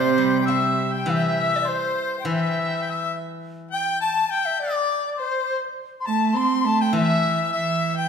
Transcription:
Already playing: cello C3, guzheng C3, dizi C5, harmonica C5
0.18 guzheng G3
0.41 dizi G5
0.46 guzheng C4, harmonica E5, dizi E5
0.93 harmonica G5, dizi G5
1.06 guzheng E3, harmonica E5
1.11 dizi E5
1.16 harmonica G5
1.24 harmonica E5
1.32 harmonica G5
1.40 harmonica E5
1.56 dizi D5 E5
1.61 dizi D5
1.66 harmonica C5, dizi C5
2.20 dizi G5
2.25 guzheng E3, harmonica E5, dizi E5
2.34 harmonica G5
2.43 harmonica E5
2.50 harmonica G5
2.60 harmonica E5
2.68 harmonica G5
2.76 harmonica E5
2.82 harmonica G5
2.91 harmonica E5
3.71 harmonica G5, dizi G5
4.01 harmonica A5, dizi A5
4.30 dizi G5, harmonica G5
4.45 dizi E5
4.60 dizi D5, harmonica D5
5.12 harmonica D5
5.18 harmonica C5, dizi C5
6.00 dizi C6
6.06 cello A3, harmonica A5, dizi A5
6.34 cello C4, harmonica C6, dizi C6
6.65 cello A3, dizi A5
6.81 harmonica G5, dizi G5
6.93 guzheng E3, cello E3, harmonica E5, dizi E5
7.53 cello E3, harmonica E5, dizi E5
7.96 harmonica G5, dizi G5

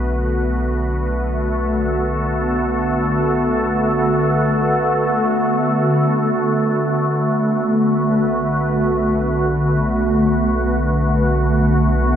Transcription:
Already playing: analog synth bass B1, ambient pad D3 A3 B3 F#4 B4, synth drone B3 F#4
0.99 ambient pad A4
6.23 analog synth bass B1, synth drone B3 F#4
7.37 ambient pad B4

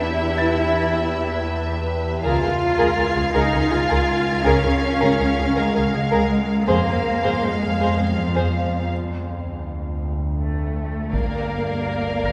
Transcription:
Already playing: double bass section E2, synth drone E2, violin section G4 B4 E5
0.02 cello section E4
0.38 grand piano A6
2.23 synth drone C#2, double bass section C#2, cello section F4, violin section G#4 A#4 F5 F6 C7
2.42 double bass section C#2, violin section G#4 A#4
2.77 double bass section C#2, violin section G#4 A#4
2.97 double bass section C#2, violin section G#4 A#4 G#6
3.16 double bass section C#2, violin section G#4
3.34 double bass section C#2, cello section D#4, violin section G#4 A#4
3.53 double bass section C#2, violin section G#4 A#4
3.70 double bass section C#2, cello section F4, violin section G#4
3.89 double bass section C#2, violin section G#4 A#4
4.44 double bass section C#2, cello section C#4, violin section G#4 A#4
4.63 double bass section C#2, violin section G#4 A#4
5.00 double bass section C#2, violin section G#4 A#4
5.19 double bass section C#2, violin section G#4 A#4
5.38 double bass section C#2, violin section G#4
5.56 double bass section C#2, cello section G#3, violin section G#4 A#4
5.75 double bass section C#2, violin section G#4 A#4
5.93 double bass section C#2, cello section G#3, violin section G#4
6.11 double bass section C#2, violin section G#4 A#4
6.67 double bass section F2, synth drone F2, cello section A#3, violin section G#4 C5 F5
6.86 double bass section F2, violin section G#4 C5
7.23 double bass section F2, violin section G#4 C5
7.42 double bass section F2, cello section G#3, violin section G#4 C5
7.61 double bass section F2, violin section G#4
7.79 double bass section F2, violin section G#4 C5
7.97 double bass section F2, violin section G#4 C5
8.16 double bass section F2, cello section F3, violin section G#4
8.35 double bass section F2, violin section G#4 C5
8.90 synth drone D2
10.38 cello section A3
11.12 synth drone G1, double bass section G1, cello section A#3, viola section A#4, violin section D5 F5 D6, taiko
11.85 violin section F6
12.24 grand piano A#6, taiko

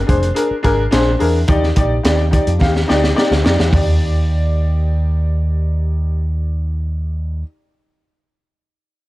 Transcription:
0.07 picked electric bass F1, upright piano D4 G#4 C5, kick, closed hi-hat
0.23 closed hi-hat
0.34 upright piano D4 G#4 A#4, closed hi-hat
0.51 muted picked electric bass stroke
0.63 picked electric bass G#1, upright piano D4 G#4 A#4, kick, snare, closed hi-hat
0.91 picked electric bass A#1, upright piano D4 G#4 C5, snare, closed hi-hat
1.19 picked electric bass E2, upright piano D4 G#4 A#4, open hi-hat
1.48 picked electric bass D#2, upright piano D#4 G4 D5, kick, closed hi-hat
1.64 snare
1.76 picked electric bass A#1, upright piano D#4 G4 D5, kick, closed hi-hat
2.03 picked electric bass D#2, upright piano D#4 G4 D5, snare, closed hi-hat
2.31 upright piano D#4 G4 D5, kick, closed hi-hat
2.47 picked electric bass F2, closed hi-hat
2.60 picked electric bass D#2, upright piano D#4 G4 F5, kick, snare
2.76 snare
2.88 picked electric bass D2, upright piano D#4 G4 D5, snare
3.04 snare
3.14 upright piano D#4 G4 D5, snare
3.31 picked electric bass D2, snare
3.43 picked electric bass F2, upright piano D#4 G4 D5, snare
3.60 picked electric bass E2, snare
3.67 upright piano D#4 G4
3.73 picked electric bass D#2, upright piano D5, kick, floor tom, open hi-hat

